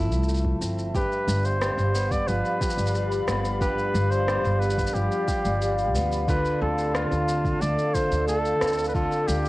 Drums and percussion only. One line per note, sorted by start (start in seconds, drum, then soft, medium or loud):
0.12 shaker soft
0.23 shaker soft
0.29 shaker soft
0.34 shaker soft
0.37 shaker soft
0.45 kick medium
0.62 shaker medium
0.79 shaker soft
0.95 kick loud
0.95 shaker soft
1.12 shaker soft
1.29 shaker medium
1.45 shaker soft
1.62 cross-stick medium
1.62 shaker soft
1.78 shaker soft
1.95 shaker medium
2.11 kick medium
2.11 shaker soft
2.28 shaker soft
2.45 shaker soft
2.61 kick loud
2.61 shaker medium
2.70 shaker medium
2.78 shaker soft
2.87 shaker soft
2.95 shaker soft
3.12 shaker soft
3.28 cross-stick medium
3.28 shaker medium
3.45 shaker soft
3.61 kick loud
3.61 shaker soft
3.78 shaker soft
3.95 shaker medium
4.12 shaker soft
4.28 cross-stick medium
4.28 shaker soft
4.45 shaker soft
4.62 shaker soft
4.70 shaker soft
4.78 kick medium
4.78 shaker medium
4.87 shaker medium
4.95 shaker soft
5.12 shaker soft
5.28 kick medium
5.28 shaker medium
5.45 shaker soft
5.62 shaker soft
5.79 shaker soft
5.95 shaker medium
6.12 shaker soft
6.28 kick loud
6.28 shaker soft
6.45 shaker soft
6.79 shaker soft
6.95 cross-stick medium
6.95 shaker soft
7.12 shaker soft
7.29 shaker medium
7.45 kick medium
7.45 shaker soft
7.62 shaker soft
7.79 shaker soft
7.95 kick medium
7.95 shaker medium
8.12 shaker soft
8.28 shaker soft
8.45 shaker soft
8.61 cross-stick medium
8.61 shaker medium
8.67 shaker medium
8.73 shaker soft
8.78 shaker soft
8.84 shaker soft
8.90 shaker soft
8.95 kick loud
8.95 shaker soft
9.12 shaker soft
9.29 shaker medium
9.45 shaker soft